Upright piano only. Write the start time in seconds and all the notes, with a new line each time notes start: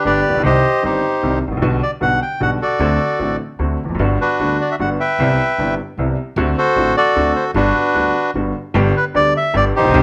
0.05 G1 G2 D3 G3 B3 G4
0.30 A1
0.34 A#1 B1
0.43 C2 C3 D#3 G3 C4 G4
0.82 G1 G2 D#3 G3 C4 G4
1.22 C2 C3 D#3 G3 C4 G4
1.48 G#1 A1
1.57 A#1
1.62 B1 B2 D3 G3 B3 F#4
2.01 B1 B2 D3 G3 B3 F#4
2.40 B1 B2 D3 G3 B3 F#4
2.79 D2 D3 A3 C4 F#4
3.19 A1 A2 D3 A3 C4 F#4
3.59 D2 D3 A3 C4 F#4
3.84 E2
3.89 F2
3.95 F#2
3.99 G1 G2 D3 G3 B3 F#4
4.40 D2 D3 G3 B3 F#4
4.79 G1 G2 D3 G3 B3 F#4
5.20 C2 C3 G3 B3 E4
5.59 G1 G2 C3 G3 B3 E4
5.98 C2 C3 G3 B3 E4
6.37 D2 D3 A3 C4 F#4
6.77 A1 A2 D3 A3 C4 F#4
7.16 D2 D3 A3 C4 F#4
7.55 G1 G2 D3 G3 B3 F#4
7.95 D2 D3 G3 B3 F#4
8.35 G1 G2 D3 G3 B3 F#4
8.74 G1 G2 D3 G3 B3 G4
9.14 D2 D3 G3 B3 G4
9.53 G1 G2 D3 G3 B3 G4
9.79 A1
9.84 A#1
9.90 B1
9.94 C2 C3 D#3 G3 C4 G4